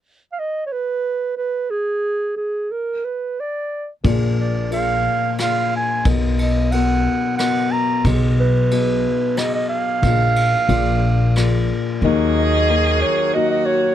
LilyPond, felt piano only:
<<
  \new Staff \with { instrumentName = "Felt piano" } { \time 3/4 \key ees \minor \tempo 4 = 90 r2. | r2. | <bes f' aes' d''>4 <bes f' aes' d''>4 <bes f' aes' d''>4 | <b fis' ais' dis''>4 <b fis' ais' fis''>4 <b fis' ais' dis''>4 |
<ces' ges' aes' ees''>4 <ces' ges' aes' ees''>4 <ces' ges' aes' ees''>4 | <bes f' aes' ees''>4 <bes f' aes' d''>4 <bes f' aes' d''>4 | <bes ees' ges' ees''>4 <bes ees' ges' bes'>4 <bes ees' ges' ees''>4 | }
  \new Staff \with { instrumentName = "Felt piano" } { \clef bass \time 3/4 \key ees \minor r2. | r2. | <bes,, bes,>2. | <b,, b,>2. |
<ces, ces>2. | <bes,, bes,>4 <bes,, bes,>2 | <ees, ees>2. | }
>>